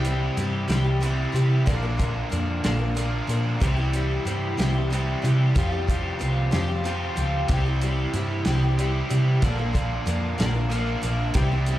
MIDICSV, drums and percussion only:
0, 0, Header, 1, 2, 480
1, 0, Start_track
1, 0, Tempo, 645856
1, 1250, Time_signature, 6, 3, 24, 8
1, 8760, End_track
2, 0, Start_track
2, 0, Title_t, "Drums"
2, 35, Note_on_c, 9, 42, 55
2, 109, Note_off_c, 9, 42, 0
2, 278, Note_on_c, 9, 42, 55
2, 352, Note_off_c, 9, 42, 0
2, 519, Note_on_c, 9, 42, 69
2, 524, Note_on_c, 9, 38, 94
2, 593, Note_off_c, 9, 42, 0
2, 598, Note_off_c, 9, 38, 0
2, 763, Note_on_c, 9, 42, 53
2, 837, Note_off_c, 9, 42, 0
2, 1009, Note_on_c, 9, 42, 49
2, 1083, Note_off_c, 9, 42, 0
2, 1243, Note_on_c, 9, 42, 73
2, 1244, Note_on_c, 9, 36, 98
2, 1317, Note_off_c, 9, 42, 0
2, 1319, Note_off_c, 9, 36, 0
2, 1483, Note_on_c, 9, 42, 58
2, 1484, Note_on_c, 9, 36, 72
2, 1557, Note_off_c, 9, 42, 0
2, 1558, Note_off_c, 9, 36, 0
2, 1725, Note_on_c, 9, 42, 56
2, 1799, Note_off_c, 9, 42, 0
2, 1962, Note_on_c, 9, 42, 69
2, 1967, Note_on_c, 9, 38, 90
2, 2036, Note_off_c, 9, 42, 0
2, 2042, Note_off_c, 9, 38, 0
2, 2206, Note_on_c, 9, 42, 56
2, 2281, Note_off_c, 9, 42, 0
2, 2448, Note_on_c, 9, 42, 52
2, 2522, Note_off_c, 9, 42, 0
2, 2687, Note_on_c, 9, 42, 84
2, 2688, Note_on_c, 9, 36, 101
2, 2761, Note_off_c, 9, 42, 0
2, 2762, Note_off_c, 9, 36, 0
2, 2924, Note_on_c, 9, 42, 62
2, 2999, Note_off_c, 9, 42, 0
2, 3172, Note_on_c, 9, 42, 61
2, 3247, Note_off_c, 9, 42, 0
2, 3416, Note_on_c, 9, 42, 68
2, 3421, Note_on_c, 9, 38, 92
2, 3490, Note_off_c, 9, 42, 0
2, 3495, Note_off_c, 9, 38, 0
2, 3662, Note_on_c, 9, 42, 53
2, 3736, Note_off_c, 9, 42, 0
2, 3900, Note_on_c, 9, 42, 53
2, 3974, Note_off_c, 9, 42, 0
2, 4130, Note_on_c, 9, 42, 80
2, 4132, Note_on_c, 9, 36, 103
2, 4204, Note_off_c, 9, 42, 0
2, 4207, Note_off_c, 9, 36, 0
2, 4375, Note_on_c, 9, 36, 70
2, 4382, Note_on_c, 9, 42, 61
2, 4449, Note_off_c, 9, 36, 0
2, 4456, Note_off_c, 9, 42, 0
2, 4613, Note_on_c, 9, 42, 54
2, 4688, Note_off_c, 9, 42, 0
2, 4848, Note_on_c, 9, 42, 61
2, 4853, Note_on_c, 9, 38, 102
2, 4922, Note_off_c, 9, 42, 0
2, 4928, Note_off_c, 9, 38, 0
2, 5094, Note_on_c, 9, 42, 45
2, 5168, Note_off_c, 9, 42, 0
2, 5329, Note_on_c, 9, 42, 52
2, 5403, Note_off_c, 9, 42, 0
2, 5563, Note_on_c, 9, 42, 75
2, 5570, Note_on_c, 9, 36, 93
2, 5637, Note_off_c, 9, 42, 0
2, 5645, Note_off_c, 9, 36, 0
2, 5808, Note_on_c, 9, 42, 54
2, 5883, Note_off_c, 9, 42, 0
2, 6047, Note_on_c, 9, 42, 57
2, 6121, Note_off_c, 9, 42, 0
2, 6280, Note_on_c, 9, 42, 71
2, 6285, Note_on_c, 9, 38, 90
2, 6354, Note_off_c, 9, 42, 0
2, 6359, Note_off_c, 9, 38, 0
2, 6531, Note_on_c, 9, 42, 53
2, 6605, Note_off_c, 9, 42, 0
2, 6767, Note_on_c, 9, 42, 61
2, 6841, Note_off_c, 9, 42, 0
2, 7003, Note_on_c, 9, 42, 83
2, 7006, Note_on_c, 9, 36, 96
2, 7077, Note_off_c, 9, 42, 0
2, 7081, Note_off_c, 9, 36, 0
2, 7245, Note_on_c, 9, 36, 74
2, 7246, Note_on_c, 9, 42, 63
2, 7319, Note_off_c, 9, 36, 0
2, 7320, Note_off_c, 9, 42, 0
2, 7485, Note_on_c, 9, 42, 61
2, 7559, Note_off_c, 9, 42, 0
2, 7728, Note_on_c, 9, 42, 73
2, 7733, Note_on_c, 9, 38, 94
2, 7803, Note_off_c, 9, 42, 0
2, 7808, Note_off_c, 9, 38, 0
2, 7964, Note_on_c, 9, 42, 54
2, 8038, Note_off_c, 9, 42, 0
2, 8197, Note_on_c, 9, 42, 54
2, 8271, Note_off_c, 9, 42, 0
2, 8427, Note_on_c, 9, 42, 79
2, 8437, Note_on_c, 9, 36, 102
2, 8501, Note_off_c, 9, 42, 0
2, 8511, Note_off_c, 9, 36, 0
2, 8669, Note_on_c, 9, 42, 58
2, 8744, Note_off_c, 9, 42, 0
2, 8760, End_track
0, 0, End_of_file